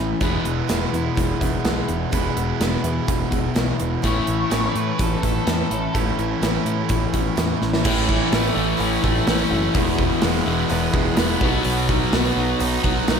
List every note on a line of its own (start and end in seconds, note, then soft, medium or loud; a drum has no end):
0.00 0.13 A1 medium
0.00 0.19 A2 medium
0.00 0.19 E3 medium
0.00 0.22 E3 medium
0.00 0.20 A3 medium
0.00 0.22 B3 soft
0.00 0.20 C#4 medium
0.00 0.22 C#4 medium
0.00 0.21 E4 medium
0.00 0.23 E4 medium
0.21 0.37 E1 medium
0.21 0.44 E2 medium
0.21 0.45 E2 medium
0.21 0.44 B2 medium
0.21 0.46 B2 medium
0.21 0.46 E3 medium
0.21 0.44 E3 medium
0.21 0.45 G#3 medium
0.21 0.44 B3 medium
0.21 0.43 E4 medium
0.21 kick loud
0.21 closed hi-hat medium
0.44 0.61 E1 medium
0.44 0.67 E2 medium
0.44 0.67 B2 medium
0.44 0.67 E3 soft
0.44 0.68 G#3 soft
0.44 0.68 B3 medium
0.44 0.69 E4 medium
0.44 closed hi-hat medium
0.68 0.85 E1 medium
0.68 0.92 E2 medium
0.68 0.91 E2 medium
0.68 0.93 B2 medium
0.68 0.91 B2 medium
0.68 0.93 E3 medium
0.68 0.93 G#3 medium
0.68 0.93 B3 medium
0.68 0.91 E4 medium
0.68 snare loud
0.68 closed hi-hat medium
0.93 1.09 E2 medium
0.93 1.15 E2 medium
0.93 1.15 B2 medium
0.93 1.14 E3 soft
0.93 1.16 G#3 soft
0.93 1.17 B3 medium
0.93 1.17 E4 medium
0.93 closed hi-hat medium
1.15 1.33 E1 medium
1.15 1.38 E2 medium
1.15 1.39 B2 medium
1.15 1.40 E3 medium
1.15 1.41 G#3 medium
1.15 1.40 B3 medium
1.15 1.39 E4 medium
1.15 kick medium
1.15 closed hi-hat medium
1.40 1.57 E1 medium
1.40 1.62 E2 medium
1.40 1.63 B2 medium
1.40 1.64 E3 soft
1.40 1.64 G#3 soft
1.40 1.65 B3 medium
1.40 1.64 E4 medium
1.40 kick medium
1.40 closed hi-hat soft
1.64 1.80 B1 medium
1.64 1.88 E2 medium
1.64 1.86 E2 medium
1.64 1.89 B2 medium
1.64 1.86 B2 medium
1.64 1.89 E3 medium
1.64 1.89 G#3 medium
1.64 1.89 B3 medium
1.64 1.88 E4 medium
1.64 snare medium
1.64 closed hi-hat medium
1.88 2.04 E1 medium
1.88 2.10 E2 medium
1.88 2.10 B2 medium
1.88 2.11 E3 soft
1.88 2.12 G#3 soft
1.88 2.12 B3 soft
1.88 2.13 E4 medium
1.88 closed hi-hat medium
2.11 2.28 E1 medium
2.11 2.36 E2 medium
2.11 2.34 E2 medium
2.11 2.36 B2 medium
2.11 2.34 B2 medium
2.11 2.36 E3 medium
2.11 2.37 G#3 medium
2.11 2.37 B3 medium
2.11 2.35 E4 medium
2.11 kick medium
2.11 closed hi-hat medium
2.36 2.52 E1 medium
2.36 2.58 E2 medium
2.36 2.58 B2 medium
2.36 2.60 E3 soft
2.36 2.61 G#3 medium
2.36 2.61 B3 medium
2.36 2.60 E4 medium
2.36 closed hi-hat medium
2.60 2.76 E1 medium
2.60 2.82 E2 medium
2.60 2.84 E2 medium
2.60 2.82 B2 medium
2.60 2.84 B2 medium
2.60 2.85 E3 medium
2.60 2.85 G#3 medium
2.60 2.84 B3 medium
2.60 2.82 E4 medium
2.60 snare loud
2.60 closed hi-hat medium
2.83 2.99 E2 medium
2.83 3.06 E2 medium
2.83 3.06 B2 medium
2.83 3.05 E3 soft
2.83 3.07 G#3 soft
2.83 3.08 B3 soft
2.83 3.08 E4 medium
2.83 closed hi-hat medium
3.07 3.24 E1 medium
3.07 3.29 E2 medium
3.07 3.30 B2 medium
3.07 3.31 E3 medium
3.07 3.31 G#3 medium
3.07 3.30 B3 medium
3.07 3.29 E4 medium
3.07 kick loud
3.07 closed hi-hat medium
3.30 3.48 E1 medium
3.30 3.53 E2 medium
3.30 3.53 B2 medium
3.30 3.54 E3 soft
3.30 3.54 G#3 medium
3.30 3.55 B3 medium
3.30 3.55 E4 medium
3.30 kick medium
3.30 closed hi-hat medium
3.54 3.71 B1 medium
3.54 3.79 E2 medium
3.54 3.77 E2 medium
3.54 3.79 B2 medium
3.54 3.77 B2 medium
3.54 3.79 E3 medium
3.54 3.79 G#3 medium
3.54 3.78 B3 medium
3.54 3.77 E4 medium
3.54 snare loud
3.54 closed hi-hat medium
3.78 3.96 E1 medium
3.78 4.01 E2 medium
3.78 4.01 B2 medium
3.78 4.01 E3 soft
3.78 4.02 G#3 soft
3.78 4.02 B3 soft
3.78 4.03 E4 medium
3.78 closed hi-hat medium
4.02 4.19 A1 medium
4.02 4.27 A2 medium
4.02 4.25 A2 medium
4.02 4.27 E3 medium
4.02 4.26 E3 medium
4.02 4.26 A3 medium
4.02 5.95 A3 medium
4.02 4.27 B3 medium
4.02 4.27 C#4 medium
4.02 4.25 E4 medium
4.02 4.74 C#5 loud
4.02 kick medium
4.02 closed hi-hat medium
4.26 4.44 A1 medium
4.26 4.49 A2 medium
4.26 4.49 E3 medium
4.26 4.50 B3 soft
4.26 4.51 C#4 soft
4.26 4.51 E4 medium
4.26 closed hi-hat medium
4.50 4.67 A1 medium
4.50 4.75 A2 medium
4.50 4.72 A2 medium
4.50 4.75 E3 medium
4.50 4.73 E3 medium
4.50 4.75 B3 medium
4.50 4.75 C#4 medium
4.50 4.74 E4 medium
4.50 snare loud
4.50 closed hi-hat medium
4.75 4.97 A2 medium
4.75 4.91 A2 medium
4.75 4.97 E3 medium
4.75 4.99 B3 soft
4.75 5.00 C#4 soft
4.75 4.99 E4 soft
4.75 5.00 B4 medium
4.75 closed hi-hat medium
4.98 5.15 A1 medium
4.98 5.20 A2 medium
4.98 5.23 E3 medium
4.98 5.21 E3 medium
4.98 5.24 B3 medium
4.98 5.24 C#4 medium
4.98 5.22 E4 medium
4.98 5.24 A4 medium
4.98 kick loud
4.98 closed hi-hat medium
5.22 5.39 A1 medium
5.22 5.44 A2 medium
5.22 5.44 E3 medium
5.22 5.48 C#4 soft
5.22 5.47 E4 medium
5.22 5.47 A4 medium
5.22 kick medium
5.22 closed hi-hat soft
5.26 5.48 B3 soft
5.46 5.62 E2 medium
5.46 5.68 A2 medium
5.46 5.72 A2 medium
5.46 5.68 E3 medium
5.46 5.72 E3 medium
5.46 5.72 B3 medium
5.46 5.95 A4 medium
5.46 snare loud
5.46 closed hi-hat medium
5.50 5.72 C#4 medium
5.50 5.70 E4 medium
5.70 5.86 A1 medium
5.70 5.92 A2 medium
5.70 5.92 E3 medium
5.70 5.95 C#4 medium
5.70 5.95 E4 medium
5.70 closed hi-hat soft
5.75 5.94 B3 soft
5.94 6.10 A1 medium
5.94 6.16 A2 medium
5.94 6.18 A2 medium
5.94 6.16 E3 medium
5.94 6.19 E3 medium
5.94 7.84 A3 medium
5.94 6.19 B3 medium
5.94 6.19 C#4 medium
5.94 6.17 E4 medium
5.94 kick medium
5.94 closed hi-hat medium
6.18 6.34 A1 medium
6.18 6.40 A2 medium
6.18 6.40 E3 medium
6.18 6.42 B3 soft
6.18 6.43 C#4 soft
6.18 6.42 E4 medium
6.18 closed hi-hat soft
6.41 6.57 A1 medium
6.41 6.66 A2 medium
6.41 6.64 A2 medium
6.41 6.66 E3 medium
6.41 6.64 E3 medium
6.41 6.67 B3 medium
6.41 6.66 C#4 medium
6.41 6.64 E4 medium
6.41 snare loud
6.41 closed hi-hat medium
6.65 6.81 A2 medium
6.65 6.88 A2 medium
6.65 6.88 E3 medium
6.65 6.89 B3 soft
6.65 6.90 C#4 medium
6.65 6.90 E4 soft
6.65 closed hi-hat medium
6.89 7.06 A1 medium
6.89 7.12 A2 medium
6.89 7.13 E3 medium
6.89 7.12 E3 medium
6.89 7.14 B3 medium
6.89 7.13 C#4 medium
6.89 7.11 E4 medium
6.89 kick medium
6.89 closed hi-hat medium
7.12 7.29 A1 medium
7.12 7.36 A2 medium
7.12 7.36 E3 medium
7.12 7.35 B3 soft
7.12 7.36 C#4 medium
7.12 7.36 E4 medium
7.12 kick medium
7.12 closed hi-hat soft
7.36 7.53 E2 medium
7.36 7.61 A2 medium
7.36 7.59 A2 medium
7.36 7.61 E3 medium
7.36 7.59 E3 medium
7.36 7.61 B3 medium
7.36 7.60 C#4 medium
7.36 7.59 E4 medium
7.36 snare loud
7.36 closed hi-hat medium
7.60 7.85 A1 medium
7.60 7.83 A2 medium
7.60 7.83 E3 medium
7.60 7.84 B3 soft
7.60 7.84 C#4 soft
7.60 7.85 E4 medium
7.60 snare soft
7.74 snare medium
7.84 8.19 A1 medium
7.84 8.09 A2 medium
7.84 8.55 A2 medium
7.84 8.09 E3 medium
7.84 8.56 E3 medium
7.84 8.09 A3 medium
7.84 8.54 A3 loud
7.84 9.74 C#4 medium
7.84 8.09 C#4 medium
7.84 8.06 E4 medium
7.84 9.73 A4 medium
7.84 9.73 E5 medium
7.84 kick loud
7.84 crash loud
8.08 8.55 E3 medium
8.08 8.31 C#4 medium
8.08 8.32 E4 medium
8.08 kick medium
8.12 8.30 A3 medium
8.30 8.49 A1 medium
8.30 8.55 E3 medium
8.30 8.56 A3 medium
8.30 8.54 C#4 medium
8.30 8.52 E4 medium
8.30 snare loud
8.30 open hi-hat medium
8.53 8.73 A1 medium
8.53 9.75 E3 medium
8.53 9.26 E3 medium
8.53 9.26 A3 medium
8.53 8.77 A3 medium
8.53 8.77 C#4 medium
8.53 8.78 E4 medium
8.57 9.26 A2 medium
8.77 8.97 A1 medium
8.77 9.03 A2 loud
8.77 9.03 E3 medium
8.77 9.03 A3 loud
8.77 9.03 C#4 medium
8.77 9.01 E4 medium
8.77 open hi-hat medium
9.02 9.21 A1 medium
9.02 9.27 A3 medium
9.02 9.28 C#4 medium
9.02 9.27 E4 medium
9.02 kick medium
9.27 9.44 A1 loud
9.27 9.73 A2 medium
9.27 9.51 E3 medium
9.27 9.74 E3 medium
9.27 9.52 A3 medium
9.27 9.75 A3 medium
9.27 9.50 C#4 medium
9.27 9.48 E4 medium
9.27 snare loud
9.27 open hi-hat medium
9.50 9.68 F#1 loud
9.50 9.76 A3 medium
9.50 9.75 C#4 medium
9.50 9.74 E4 medium
9.74 10.09 E1 medium
9.74 9.98 E2 medium
9.74 10.45 E2 loud
9.74 9.99 B2 medium
9.74 10.45 B2 loud
9.74 9.99 E3 medium
9.74 10.44 E3 loud
9.74 9.99 G#3 loud
9.74 11.39 B3 medium
9.74 9.98 B3 medium
9.74 9.97 E4 medium
9.74 11.39 G#4 medium
9.74 11.39 E5 medium
9.74 kick medium
9.74 open hi-hat medium
9.98 11.17 B2 medium
9.98 10.21 E3 medium
9.98 10.22 G#3 medium
9.98 10.23 B3 medium
9.98 10.22 E4 medium
9.98 kick medium
10.22 10.40 E1 medium
10.22 10.46 E3 medium
10.22 10.46 G#3 medium
10.22 10.44 B3 medium
10.22 10.44 E4 medium
10.22 snare loud
10.22 open hi-hat medium
10.45 10.63 E1 medium
10.45 11.15 E2 medium
10.45 11.17 B2 medium
10.45 11.16 E3 medium
10.45 10.68 E3 medium
10.45 10.68 G#3 soft
10.45 10.69 B3 medium
10.45 10.69 E4 medium
10.68 10.88 E1 medium
10.68 10.93 E2 medium
10.68 10.94 B2 medium
10.68 10.93 E3 medium
10.68 10.91 G#3 medium
10.68 10.90 B3 medium
10.68 10.90 E4 medium
10.68 open hi-hat medium
10.91 11.11 E1 loud
10.91 11.14 E3 medium
10.91 11.15 G#3 medium
10.91 11.16 B3 medium
10.91 11.16 E4 medium
10.91 kick medium
11.15 11.35 E1 loud
11.15 11.40 E2 medium
11.15 11.39 B2 medium
11.15 11.40 E3 medium
11.15 11.41 G#3 medium
11.15 11.40 B3 medium
11.15 11.38 E4 medium
11.15 snare loud
11.15 open hi-hat medium
11.19 11.41 E3 medium
11.39 11.58 B1 loud
11.39 12.11 B2 loud
11.39 11.64 B2 medium
11.39 12.12 F#3 loud
11.39 13.20 B3 medium
11.39 11.62 B3 medium
11.39 11.63 D#4 medium
11.39 11.63 F#4 medium
11.39 13.20 F#4 medium
11.39 13.20 D#5 medium
11.39 kick loud
11.44 12.14 B3 loud
11.62 12.00 B1 medium
11.62 11.88 B2 medium
11.62 11.88 F#3 loud
11.62 11.88 B3 medium
11.62 11.88 D#4 medium
11.62 11.86 F#4 medium
11.62 open hi-hat medium
11.87 12.36 F#3 medium
11.87 12.13 B3 soft
11.87 12.13 D#4 medium
11.87 12.12 F#4 medium
11.87 kick medium
12.12 12.30 B1 medium
12.12 12.82 B2 medium
12.12 12.37 F#3 medium
12.12 12.83 F#3 medium
12.12 12.37 B3 medium
12.12 12.82 B3 medium
12.12 12.37 D#4 medium
12.12 12.35 F#4 medium
12.12 snare loud
12.12 open hi-hat medium
12.36 12.53 B1 medium
12.36 13.20 F#3 medium
12.36 12.59 B3 soft
12.36 12.60 D#4 medium
12.36 12.60 F#4 medium
12.59 12.77 B1 medium
12.59 12.83 B2 medium
12.59 12.84 F#3 medium
12.59 12.84 B3 medium
12.59 12.84 D#4 medium
12.59 12.82 F#4 loud
12.59 open hi-hat medium
12.83 13.01 B1 medium
12.83 13.20 B2 medium
12.83 13.20 F#3 medium
12.83 13.20 B3 loud
12.83 13.07 B3 soft
12.83 13.08 D#4 medium
12.83 13.07 F#4 medium
12.83 kick medium
13.07 13.20 B1 medium
13.07 13.20 F#3 medium
13.07 13.20 B3 medium
13.07 13.20 D#4 medium
13.07 13.20 F#4 medium
13.07 snare loud
13.07 open hi-hat medium